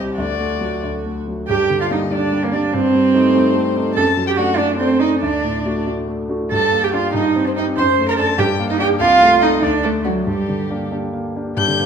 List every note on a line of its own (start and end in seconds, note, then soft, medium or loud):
0.00 0.15 C2 medium
0.00 0.20 G3 soft
0.00 0.15 C4 soft
0.00 0.16 G4 soft
0.00 0.16 G4 medium
0.18 0.82 D2 medium
0.18 1.14 F#4 medium
0.18 0.82 D5 medium
0.40 0.74 A3 soft
0.61 0.96 F#3 soft
0.83 1.47 D2 soft
1.05 1.40 A3 soft
1.27 1.49 F#3 soft
1.48 2.71 G2 medium
1.48 1.78 G4 medium
1.48 1.78 G5 medium
1.70 2.04 D3 soft
1.81 1.85 F4 medium
1.81 1.93 F5 medium
1.90 2.09 G3 soft
1.90 2.10 A#3 soft
1.90 2.10 D4 medium
1.90 1.99 D#4 medium
1.90 2.14 D#5 medium
2.11 2.30 G3 soft
2.11 2.31 A#3 soft
2.11 2.31 D4 medium
2.11 2.46 D4 medium
2.11 2.45 D5 medium
2.33 2.52 G3 medium
2.44 2.54 A#3 medium
2.44 2.52 A#4 medium
2.52 2.72 G3 soft
2.52 2.72 A#3 soft
2.52 2.75 D4 medium
2.52 2.73 D4 medium
2.52 2.60 D5 medium
2.73 3.92 G2 medium
2.73 3.96 C4 loud
2.73 3.93 C5 medium
2.95 3.27 G3 medium
3.14 3.33 A3 medium
3.14 3.33 C4 medium
3.14 3.33 D#4 medium
3.35 3.53 A3 soft
3.35 3.53 C4 medium
3.35 3.53 D#4 medium
3.55 3.75 A3 medium
3.76 3.94 A3 medium
3.76 3.94 C4 medium
3.76 3.95 D#4 medium
3.95 5.19 F#2 medium
3.95 4.04 A4 loud
3.95 4.26 A5 medium
4.17 4.50 F#3 medium
4.27 4.39 G4 medium
4.27 4.31 G5 medium
4.37 4.57 A3 medium
4.37 4.57 D4 medium
4.37 4.59 F#4 medium
4.37 4.57 F#5 medium
4.57 4.78 A3 medium
4.57 4.78 D4 loud
4.57 4.78 D4 medium
4.57 4.66 D5 medium
4.78 5.00 A3 medium
4.78 5.01 C4 medium
4.78 5.00 C5 medium
5.00 5.20 A3 soft
5.00 5.21 D4 medium
5.00 5.20 D#4 medium
5.00 5.09 D#5 medium
5.21 6.48 D2 medium
5.21 5.85 D4 medium
5.21 5.85 D5 medium
5.44 5.78 A2 soft
5.66 5.85 A3 soft
5.66 5.85 D4 soft
5.66 5.85 F#4 medium
5.87 6.06 A3 soft
5.87 6.06 D4 soft
5.87 6.06 F#4 soft
6.08 6.28 A3 soft
6.29 6.49 A3 soft
6.29 6.49 D4 soft
6.29 6.49 F#4 soft
6.51 7.13 G2 medium
6.51 6.85 A4 medium
6.51 6.85 A5 medium
6.72 7.06 A#3 soft
6.84 6.95 G4 medium
6.84 6.94 G5 medium
6.93 7.13 D4 medium
6.93 7.14 F4 medium
6.93 7.13 G4 medium
6.93 7.15 F5 medium
7.14 7.75 G2 medium
7.14 7.48 D#4 medium
7.14 7.24 D#5 medium
7.36 7.69 C4 medium
7.47 7.55 C4 medium
7.47 7.51 C5 medium
7.56 7.64 D#4 medium
7.56 7.76 D#4 soft
7.56 7.76 G4 medium
7.56 7.66 D#5 medium
7.77 8.37 F#2 medium
7.77 8.07 C5 loud
7.77 7.86 C6 medium
7.99 8.31 A3 medium
8.08 8.17 A#4 medium
8.08 8.13 A#5 medium
8.17 8.37 D4 medium
8.17 8.25 A4 medium
8.17 8.37 A4 medium
8.17 8.41 A5 medium
8.38 8.98 G2 medium
8.38 8.46 G4 loud
8.38 8.69 G5 medium
8.59 8.92 A#3 medium
8.70 8.79 D#4 medium
8.70 8.79 D#5 medium
8.79 8.98 D4 medium
8.79 8.87 G4 loud
8.79 8.98 G4 medium
8.79 8.88 G5 medium
9.00 9.61 C2 medium
9.00 9.44 F4 loud
9.00 9.41 F5 loud
9.21 9.54 A3 medium
9.42 9.60 D#4 medium
9.42 9.65 D#4 medium
9.42 9.61 A4 medium
9.42 9.62 D#5 medium
9.62 10.24 D2 medium
9.62 9.87 D4 medium
9.62 9.71 D5 medium
9.83 10.18 A3 medium
9.83 10.09 A3 medium
9.83 9.91 A4 medium
10.05 10.28 F#3 medium
10.05 10.24 D4 soft
10.05 10.13 F#4 medium
10.05 10.25 F#4 soft
10.27 11.54 G2 medium
10.27 10.92 G3 medium
10.27 10.91 G4 medium
10.49 10.84 D3 soft
10.70 10.90 A#3 soft
10.70 10.90 D4 soft
10.70 10.91 G4 soft
10.92 11.12 A#3 soft
10.92 11.12 D4 soft
10.92 11.12 G4 soft
11.13 11.35 A#3 soft
11.36 11.56 A#3 soft
11.36 11.56 D4 soft
11.36 11.56 G4 soft
11.57 11.86 G2 medium
11.57 11.86 G4 medium
11.57 11.86 G6 loud
11.68 11.85 D3 soft
11.79 11.86 A#3 soft